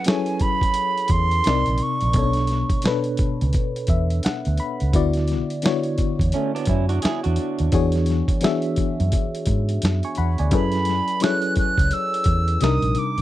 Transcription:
Already playing: F#3 C#4 E4 G#4 A4 B4
0.04 F#3 C#4 E4 G#4 A4 C#5 G#5, snare, closed hi-hat
0.26 closed hi-hat
0.40 B5, kick, closed hi-hat
0.61 kick, closed hi-hat
0.74 closed hi-hat
0.98 closed hi-hat
1.08 E2 C6, kick, closed hi-hat
1.31 closed hi-hat
1.44 C2 C3 C4 D#4 A#4, snare, closed hi-hat
1.48 D5
1.66 A#1, closed hi-hat
1.78 closed hi-hat
1.82 C#6
2.01 A#1, closed hi-hat
2.13 B1 B2 B3 C#4 A4, kick, closed hi-hat
2.18 C#5
2.23 D4
2.33 snare, closed hi-hat
2.47 closed hi-hat
2.51 snare
2.70 kick, closed hi-hat
2.82 B2 B3 D4, snare, closed hi-hat
2.86 A4 B4
3.04 closed hi-hat
3.17 muted fingered electric bass stroke, kick, closed hi-hat
3.41 C#2, closed hi-hat
3.53 kick, closed hi-hat
3.76 closed hi-hat
3.87 E2 E5, kick, closed hi-hat
4.10 closed hi-hat
4.23 F#5, muted fingered electric bass stroke, snare, closed hi-hat
4.45 D2, closed hi-hat
4.58 B5, closed hi-hat
4.80 C#2, closed hi-hat
4.93 D2 D3 B3 E4 F#4 D5, kick, closed hi-hat
5.13 snare, closed hi-hat
5.28 closed hi-hat
5.32 snare
5.50 closed hi-hat
5.62 D3 B3 E4 F#4, snare, closed hi-hat
5.66 C#5
5.83 closed hi-hat
5.98 muted fingered electric bass stroke, kick, closed hi-hat
6.19 E2, kick, closed hi-hat
6.32 A3 C#4, closed hi-hat
6.55 B3 D4, closed hi-hat
6.65 F#2 C#4 E4, kick, closed hi-hat
6.89 D4 F#4, closed hi-hat
7.02 E4 G#4, muted fingered electric bass stroke, snare, closed hi-hat
7.23 E2 D4 F#4, closed hi-hat
7.36 closed hi-hat
7.59 D#2, closed hi-hat
7.72 E2 E3 B3 D4 F#4 G#4 C#5, kick, closed hi-hat
7.92 snare, closed hi-hat
8.06 closed hi-hat
8.10 snare
8.28 kick, closed hi-hat
8.41 E3 B3 D4 F#4 G#4 E5, snare, closed hi-hat
8.62 closed hi-hat
8.76 muted fingered electric bass stroke, kick, closed hi-hat
9.00 F#2, closed hi-hat
9.12 kick, closed hi-hat
9.35 closed hi-hat
9.46 G#2, kick, closed hi-hat
9.69 closed hi-hat
9.82 F#2, snare, closed hi-hat
10.03 G#5 C#6, closed hi-hat
10.15 E2 F#5 B5, closed hi-hat
10.38 D2 D5 G#5, closed hi-hat
10.51 F#2 F#3 C#4 E4 G#4 A4 B4 B5, kick, closed hi-hat
10.72 snare, closed hi-hat
10.85 closed hi-hat
10.89 snare
11.08 closed hi-hat
11.20 F#3 C#4 E4 G#4 A4 F#6, snare, closed hi-hat
11.24 C#5
11.42 closed hi-hat
11.56 F#6, muted fingered electric bass stroke, kick, closed hi-hat
11.78 C#2, kick, closed hi-hat
11.91 E6, closed hi-hat
12.14 closed hi-hat
12.24 E2, kick, closed hi-hat
12.48 closed hi-hat
12.61 C2 C3 G3 D4 D#4 A#4 D#6, snare, closed hi-hat
12.82 A#1, closed hi-hat
12.95 D6, closed hi-hat
13.18 A#1, closed hi-hat

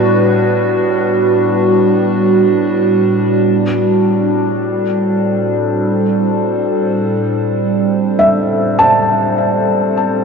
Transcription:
Already playing: A2 G3 B3 D4 F#4 B4
3.59 C4
4.15 A4
4.33 C5
8.19 E5
8.79 A5

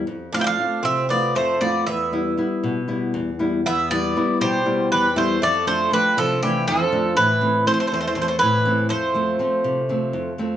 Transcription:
0.33 A3 C4 D4 F4 F5
0.40 E4 G5
0.44 D4 F5
0.59 A3 C4 F4
0.83 C3 C4 E5
1.09 A3 B3 C4 F4 D5
1.35 F2 A3 C5
1.60 A3 B3 C4 F4 D5
1.87 E2 B3 E5
2.12 G3 B3 E4
2.37 G3 B3 E4
2.63 B2
2.88 G3 B3 E4
3.14 E2
3.39 G3 B3 E4
3.66 E2 B3 E5
3.90 G3 B3 E4 D5
4.16 G3 B3 E4
4.41 B2 G3 C5
4.66 G3 B3 E4
4.92 E2 G3 B4
5.16 G3 A3 B3 E4 C5
5.42 F2 A3 D5
5.67 F3 A3 D4 C5
5.91 F3 G3 A3 D4 B4
6.17 C3 F3 A4
6.42 E3 F3 A3 D4 G4
6.67 F2 F3 A4
6.92 F3 A3 D4
7.17 A2 E3 B4
7.41 E3 A3 C4
7.66 E3 A3 C4 C5
7.74 A3 C5
7.80 A3 C5
7.87 A3 C5
7.92 E2 A3 C5
8.00 A3 C5
8.07 A3 C5
8.15 E3 A3 C4 C5
8.22 A3 C5
8.28 A3 C5
8.39 A2 E3 B4
8.65 E3 A3 C4
8.89 F2 A3 C5
9.14 F3 A3 C4
9.39 F3 A3 C4
9.64 C3
9.89 F3 A3 C4
10.13 F2
10.38 F3 A3 C4

